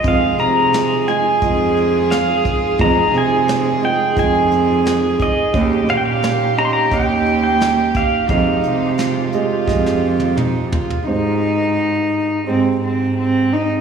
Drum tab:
HH |x-x-x-x-x-x-x-x-|x-x-x-x-x-x-x-x-|x-x-x-x-x-x-x-x-|x-x-x-x---------|
SD |----o-------o---|----o-------o---|----o-------o---|----o---oo------|
T1 |----------------|----------------|----------------|-----------o----|
T2 |----------------|----------------|----------------|------------o---|
FT |----------------|----------------|----------------|--------------oo|
BD |o-------o-----o-|o-------o-----o-|o-------o-----o-|o-------o-------|

HH |----------------|
SD |----------------|
T1 |----------------|
T2 |----------------|
FT |----------------|
BD |----------------|